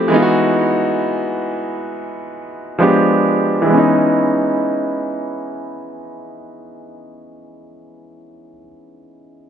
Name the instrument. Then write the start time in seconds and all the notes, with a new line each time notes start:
grand piano
Already playing: F3 A3 C4 E4 G4
0.08 E3 G#3 B3
0.14 D#4 F4
0.22 F#4
2.79 F3 G#3 B3 D4 G4
3.62 E3 G#3
3.70 B3 C#4
3.78 D#4